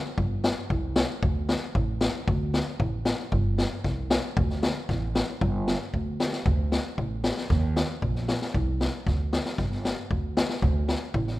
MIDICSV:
0, 0, Header, 1, 3, 480
1, 0, Start_track
1, 0, Tempo, 522193
1, 162, Time_signature, 2, 2, 24, 8
1, 10474, End_track
2, 0, Start_track
2, 0, Title_t, "Upright bass"
2, 0, Program_c, 0, 32
2, 161, Note_on_c, 0, 31, 93
2, 451, Note_off_c, 0, 31, 0
2, 644, Note_on_c, 0, 36, 97
2, 934, Note_off_c, 0, 36, 0
2, 1125, Note_on_c, 0, 38, 97
2, 1415, Note_off_c, 0, 38, 0
2, 1607, Note_on_c, 0, 33, 99
2, 1897, Note_off_c, 0, 33, 0
2, 2090, Note_on_c, 0, 38, 101
2, 2379, Note_off_c, 0, 38, 0
2, 2568, Note_on_c, 0, 33, 93
2, 2858, Note_off_c, 0, 33, 0
2, 3050, Note_on_c, 0, 31, 98
2, 3339, Note_off_c, 0, 31, 0
2, 3531, Note_on_c, 0, 36, 93
2, 3820, Note_off_c, 0, 36, 0
2, 4014, Note_on_c, 0, 38, 98
2, 4303, Note_off_c, 0, 38, 0
2, 4493, Note_on_c, 0, 33, 97
2, 4783, Note_off_c, 0, 33, 0
2, 4975, Note_on_c, 0, 31, 105
2, 5264, Note_off_c, 0, 31, 0
2, 5454, Note_on_c, 0, 38, 94
2, 5743, Note_off_c, 0, 38, 0
2, 5934, Note_on_c, 0, 38, 102
2, 6223, Note_off_c, 0, 38, 0
2, 6415, Note_on_c, 0, 33, 91
2, 6703, Note_off_c, 0, 33, 0
2, 6893, Note_on_c, 0, 39, 114
2, 7182, Note_off_c, 0, 39, 0
2, 7372, Note_on_c, 0, 34, 90
2, 7661, Note_off_c, 0, 34, 0
2, 7853, Note_on_c, 0, 36, 100
2, 8141, Note_off_c, 0, 36, 0
2, 8332, Note_on_c, 0, 38, 85
2, 8619, Note_off_c, 0, 38, 0
2, 8809, Note_on_c, 0, 31, 96
2, 9096, Note_off_c, 0, 31, 0
2, 9288, Note_on_c, 0, 38, 88
2, 9575, Note_off_c, 0, 38, 0
2, 9764, Note_on_c, 0, 38, 107
2, 10051, Note_off_c, 0, 38, 0
2, 10240, Note_on_c, 0, 33, 104
2, 10474, Note_off_c, 0, 33, 0
2, 10474, End_track
3, 0, Start_track
3, 0, Title_t, "Drums"
3, 162, Note_on_c, 9, 36, 74
3, 254, Note_off_c, 9, 36, 0
3, 402, Note_on_c, 9, 38, 81
3, 494, Note_off_c, 9, 38, 0
3, 645, Note_on_c, 9, 36, 70
3, 737, Note_off_c, 9, 36, 0
3, 880, Note_on_c, 9, 38, 99
3, 972, Note_off_c, 9, 38, 0
3, 1127, Note_on_c, 9, 36, 82
3, 1218, Note_off_c, 9, 36, 0
3, 1367, Note_on_c, 9, 38, 78
3, 1459, Note_off_c, 9, 38, 0
3, 1609, Note_on_c, 9, 36, 77
3, 1701, Note_off_c, 9, 36, 0
3, 1845, Note_on_c, 9, 38, 91
3, 1937, Note_off_c, 9, 38, 0
3, 2092, Note_on_c, 9, 36, 86
3, 2184, Note_off_c, 9, 36, 0
3, 2332, Note_on_c, 9, 38, 73
3, 2424, Note_off_c, 9, 38, 0
3, 2572, Note_on_c, 9, 36, 74
3, 2663, Note_off_c, 9, 36, 0
3, 2806, Note_on_c, 9, 38, 83
3, 2898, Note_off_c, 9, 38, 0
3, 3052, Note_on_c, 9, 36, 80
3, 3144, Note_off_c, 9, 36, 0
3, 3293, Note_on_c, 9, 38, 68
3, 3385, Note_off_c, 9, 38, 0
3, 3531, Note_on_c, 9, 38, 25
3, 3533, Note_on_c, 9, 36, 70
3, 3623, Note_off_c, 9, 38, 0
3, 3625, Note_off_c, 9, 36, 0
3, 3772, Note_on_c, 9, 38, 91
3, 3864, Note_off_c, 9, 38, 0
3, 4015, Note_on_c, 9, 36, 94
3, 4106, Note_off_c, 9, 36, 0
3, 4135, Note_on_c, 9, 38, 22
3, 4227, Note_off_c, 9, 38, 0
3, 4253, Note_on_c, 9, 38, 86
3, 4345, Note_off_c, 9, 38, 0
3, 4495, Note_on_c, 9, 36, 66
3, 4496, Note_on_c, 9, 38, 28
3, 4587, Note_off_c, 9, 36, 0
3, 4588, Note_off_c, 9, 38, 0
3, 4736, Note_on_c, 9, 38, 83
3, 4827, Note_off_c, 9, 38, 0
3, 4976, Note_on_c, 9, 36, 86
3, 5068, Note_off_c, 9, 36, 0
3, 5217, Note_on_c, 9, 38, 72
3, 5309, Note_off_c, 9, 38, 0
3, 5457, Note_on_c, 9, 36, 59
3, 5549, Note_off_c, 9, 36, 0
3, 5699, Note_on_c, 9, 38, 81
3, 5791, Note_off_c, 9, 38, 0
3, 5815, Note_on_c, 9, 38, 55
3, 5907, Note_off_c, 9, 38, 0
3, 5936, Note_on_c, 9, 36, 90
3, 6028, Note_off_c, 9, 36, 0
3, 6176, Note_on_c, 9, 38, 77
3, 6268, Note_off_c, 9, 38, 0
3, 6415, Note_on_c, 9, 36, 62
3, 6507, Note_off_c, 9, 36, 0
3, 6653, Note_on_c, 9, 38, 87
3, 6745, Note_off_c, 9, 38, 0
3, 6775, Note_on_c, 9, 38, 52
3, 6867, Note_off_c, 9, 38, 0
3, 6895, Note_on_c, 9, 36, 78
3, 6895, Note_on_c, 9, 38, 25
3, 6987, Note_off_c, 9, 36, 0
3, 6987, Note_off_c, 9, 38, 0
3, 7136, Note_on_c, 9, 38, 77
3, 7228, Note_off_c, 9, 38, 0
3, 7375, Note_on_c, 9, 36, 66
3, 7467, Note_off_c, 9, 36, 0
3, 7495, Note_on_c, 9, 38, 23
3, 7586, Note_off_c, 9, 38, 0
3, 7614, Note_on_c, 9, 38, 82
3, 7706, Note_off_c, 9, 38, 0
3, 7738, Note_on_c, 9, 38, 50
3, 7829, Note_off_c, 9, 38, 0
3, 7854, Note_on_c, 9, 36, 70
3, 7946, Note_off_c, 9, 36, 0
3, 8095, Note_on_c, 9, 38, 70
3, 8187, Note_off_c, 9, 38, 0
3, 8333, Note_on_c, 9, 36, 75
3, 8336, Note_on_c, 9, 38, 28
3, 8425, Note_off_c, 9, 36, 0
3, 8428, Note_off_c, 9, 38, 0
3, 8574, Note_on_c, 9, 38, 75
3, 8666, Note_off_c, 9, 38, 0
3, 8690, Note_on_c, 9, 38, 54
3, 8782, Note_off_c, 9, 38, 0
3, 8809, Note_on_c, 9, 36, 72
3, 8810, Note_on_c, 9, 38, 24
3, 8901, Note_off_c, 9, 36, 0
3, 8902, Note_off_c, 9, 38, 0
3, 8932, Note_on_c, 9, 38, 20
3, 9024, Note_off_c, 9, 38, 0
3, 9053, Note_on_c, 9, 38, 72
3, 9145, Note_off_c, 9, 38, 0
3, 9290, Note_on_c, 9, 36, 68
3, 9382, Note_off_c, 9, 36, 0
3, 9531, Note_on_c, 9, 38, 94
3, 9623, Note_off_c, 9, 38, 0
3, 9645, Note_on_c, 9, 38, 58
3, 9737, Note_off_c, 9, 38, 0
3, 9766, Note_on_c, 9, 36, 89
3, 9858, Note_off_c, 9, 36, 0
3, 10005, Note_on_c, 9, 38, 73
3, 10096, Note_off_c, 9, 38, 0
3, 10242, Note_on_c, 9, 36, 69
3, 10334, Note_off_c, 9, 36, 0
3, 10363, Note_on_c, 9, 38, 23
3, 10455, Note_off_c, 9, 38, 0
3, 10474, End_track
0, 0, End_of_file